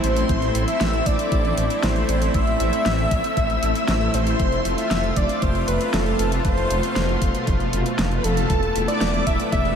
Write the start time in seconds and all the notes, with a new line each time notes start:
Already playing: A3 C4 E4
0.04 A1 C5 C6, closed hi-hat
0.17 closed hi-hat
0.29 A1, kick, closed hi-hat
0.42 closed hi-hat
0.55 A1, closed hi-hat
0.68 E5 E6, closed hi-hat
0.81 A1, snare, closed hi-hat
0.93 closed hi-hat
1.06 A1 D5 D6, kick, closed hi-hat
1.19 closed hi-hat
1.32 A1, kick, closed hi-hat
1.45 closed hi-hat
1.57 A1, closed hi-hat
1.70 closed hi-hat
1.83 A1 C5 C6, snare, closed hi-hat
1.96 closed hi-hat
2.09 A1, closed hi-hat
2.22 closed hi-hat
2.34 A1 E5 E6, kick, closed hi-hat
2.47 closed hi-hat
2.60 A1 E5 E6, closed hi-hat
2.73 closed hi-hat
2.86 A1, snare, closed hi-hat
2.98 closed hi-hat
3.11 A1, kick, closed hi-hat
3.24 closed hi-hat
3.37 A1, kick, closed hi-hat
3.50 closed hi-hat
3.63 A1, closed hi-hat
3.75 closed hi-hat
3.88 A1, snare, closed hi-hat
4.01 closed hi-hat
4.14 A1 C5 C6, closed hi-hat
4.27 closed hi-hat
4.39 F1 F4, kick, closed hi-hat
4.52 closed hi-hat
4.65 F1, closed hi-hat
4.78 E5 E6, closed hi-hat
4.91 F1, snare, closed hi-hat
5.04 closed hi-hat
5.16 F1 D5 D6, kick, closed hi-hat
5.29 closed hi-hat
5.42 F1 C5 C6, kick, closed hi-hat
5.55 closed hi-hat
5.68 F1 B4 B5, closed hi-hat
5.81 closed hi-hat
5.93 F1 A4 A5, snare, closed hi-hat
6.06 closed hi-hat
6.19 F1 A4 A5, closed hi-hat
6.32 closed hi-hat
6.45 F1 B2 C5 C6, kick, closed hi-hat
6.58 closed hi-hat
6.70 F1, closed hi-hat
6.83 closed hi-hat
6.96 F1, snare, closed hi-hat
7.09 closed hi-hat
7.22 F1, kick, closed hi-hat
7.35 closed hi-hat
7.47 F1, kick, closed hi-hat
7.60 closed hi-hat
7.73 F1, closed hi-hat
7.86 closed hi-hat
7.99 F1, snare, closed hi-hat
8.12 closed hi-hat
8.17 B4 B5
8.24 F1 A4 A5, closed hi-hat
8.37 closed hi-hat
8.50 E1 A3 B3 E4, kick, closed hi-hat
8.63 closed hi-hat
8.75 E1, closed hi-hat
8.88 D5 D6, closed hi-hat
9.01 E1, snare, closed hi-hat
9.14 closed hi-hat
9.27 E1 E5 E6, kick, closed hi-hat
9.40 closed hi-hat
9.52 E1 E5 E6, kick, closed hi-hat
9.65 closed hi-hat